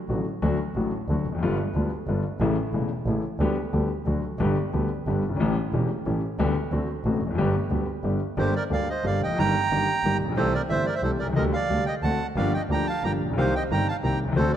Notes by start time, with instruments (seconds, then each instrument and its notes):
0.09 grand piano A1 A2 D3 F#3 A3 F#4, double bass A1
0.42 grand piano D2 D3 F#3 A3 F#4, double bass D2
0.76 double bass A1, grand piano A1 A2 D3 F#3 A3 F#4
1.08 double bass D2, grand piano D2 D3 F#3 A3 F#4
1.25 double bass F1
1.32 grand piano E2 F2
1.38 double bass G1, grand piano F#2
1.43 grand piano G1 G2 D3 G3 B3 F4
1.75 double bass D2, grand piano D2 D3 G3 B3 F4
2.08 double bass G1, grand piano G1 G2 D3 G3 B3 F4
2.40 double bass A1, grand piano A1 A2 C#3 E3 A3 E4
2.73 double bass E1, grand piano E1 E2 C#3 E3 A3 E4
3.06 double bass A1, grand piano A1 A2 C#3 E3 A3 E4
3.40 double bass D2, grand piano D2 D3 G3 B3 G4
3.73 grand piano D2 D3 G3 B3 G4, double bass D2
4.06 double bass D2, grand piano D2 D3 F#3 A3 F#4
4.39 double bass G1, grand piano G1 G2 D3 G3 B3 G4
4.73 grand piano D2 D3 G3 B3 G4, double bass D2
5.07 double bass G1, grand piano G1 G2 D3 G3 B3 G4
5.24 double bass G1
5.29 grand piano F#1 G1
5.36 grand piano G#1 A2 E3, double bass A1
5.40 grand piano A1 A3 C#4 G4
5.73 double bass E1, grand piano E1 E2 E3 A3 C#4 G4
6.06 grand piano A1 A2 E3 A3 C#4 G4, double bass A1
6.39 double bass D2, grand piano D2 D3 G3 B3 G4
6.72 double bass D2, grand piano D2 D3 A3 C4 F#4
7.05 double bass A1, grand piano A1 A2 D3 A3 C4 F#4
7.21 double bass F1
7.26 grand piano E2
7.30 grand piano F2
7.35 double bass G1, grand piano G1 F#2 G2 D3 G3 B3 G4
7.70 double bass D2, grand piano D2 D3 G3 B3 G4
8.04 double bass G1, grand piano G1 G2 D3 G3 B3 G4
8.37 grand piano G1 G2 D3 G3 A#3 G4, double bass G1, bandoneon G4 C5
8.56 bandoneon A#4 D5
8.70 grand piano D2 D3 G3 A#3 G4, double bass D2, bandoneon D5 F5
8.90 bandoneon C5 D#5
9.04 grand piano G1 G2 D3 G3 A#3 G4, double bass G1, bandoneon D5 F5
9.22 double bass F1, bandoneon D#5 G5
9.26 grand piano E2
9.31 grand piano F2
9.35 double bass G1, grand piano F#2 G2, bandoneon A#5
9.39 grand piano G1 D#3 G3 A#3 G4, bandoneon G5
9.71 double bass G1, grand piano G1 G2 D#3 G3 A#3 G4
10.04 double bass G1, grand piano G1 G2 D#3 G3 A#3 G4
10.20 grand piano A1, double bass A#1
10.29 grand piano A#1 B1
10.36 double bass C2, grand piano C2 C3 E3 A3 C4 G4, bandoneon A4 C5
10.54 bandoneon A#4 D5
10.69 grand piano G1 G2 E3 A3 C4 G4, double bass G1, bandoneon C5 E5
10.86 bandoneon A#4 D5
10.95 bandoneon C5 E5
11.02 double bass C2, grand piano C2 C3 E3 A3 C4 G4, bandoneon A4 C5
11.19 double bass C2, bandoneon A#4 D5
11.23 grand piano B1
11.29 grand piano C2
11.33 grand piano C#2 D2 D3 G3 A#3, double bass D2, bandoneon D#5
11.37 grand piano G4, bandoneon A#4
11.53 bandoneon D5 F5
11.69 double bass D2, grand piano D2 D3 G3 A#3 G4
11.86 bandoneon D#5 G5
12.02 double bass D2, grand piano D2 D3 A3 C4 F#4, bandoneon F#5 A5
12.36 double bass G1, grand piano G1 G2 F3 A#3 D4 G4, bandoneon D5 F5
12.54 bandoneon D#5 G5
12.70 double bass D2, grand piano D2 D3 F3 A#3 D4 G4, bandoneon G5 A#5
12.87 bandoneon F5 A5
13.03 double bass G1, grand piano G1 G2 F3 A#3 D4 G4, bandoneon G5 A#5
13.20 double bass A#1
13.25 grand piano A1
13.30 grand piano A#1 B1
13.37 double bass C2, grand piano C2 C3 D#3 A#3 C4 G4, bandoneon C5 F5
13.55 bandoneon D#5 G5
13.70 double bass G1, grand piano G1 G2 D#3 A#3 C4 G4, bandoneon G5 A#5
13.88 bandoneon F5 A5
14.03 double bass C2, grand piano C2 C3 D#3 A#3 C4 G4, bandoneon G5 A#5
14.19 double bass C2
14.24 grand piano B1 C2
14.32 grand piano C#2 D2 D3 A3 C4, double bass D2, bandoneon C5
14.36 grand piano F#4, bandoneon A4
14.53 bandoneon D5